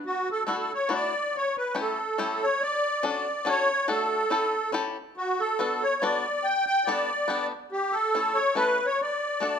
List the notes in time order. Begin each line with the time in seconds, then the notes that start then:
0.06 F#4
0.31 A4
0.45 A3 D4 E4 F#4 A4
0.58 A4
0.74 C#5
0.89 A3 D4 E4 F#4
0.94 D5
1.37 C#5
1.57 B4
1.75 A3 C#4 E4 G4
1.81 A4
2.18 A3 C#4 E4 G4
2.43 C#5
2.62 D5
3.03 C#4 D4 F#4 A4 D5
3.45 C#4 D4 F#4 A4 C#5
3.88 A3 D4 F#4 A4
4.30 C#4 E4 G4 A4
4.72 C#4 E4 G4 A4
5.17 F#4
5.40 A4
5.59 B3 D4 F#4 A4
5.83 C#5
6.02 B3 D4 F#4 A4 D5
6.44 G5
6.67 G5
6.85 B3 D4 G4 D5
6.89 A4
7.28 B3 D4 G4 A4
7.72 G4
7.93 A4
8.15 A3 C#4 E4 A4
8.35 C#5
8.55 A3 C#4 E4 A4 B4
8.86 C#5
9.02 D5
9.40 A3 D4 F#4 A4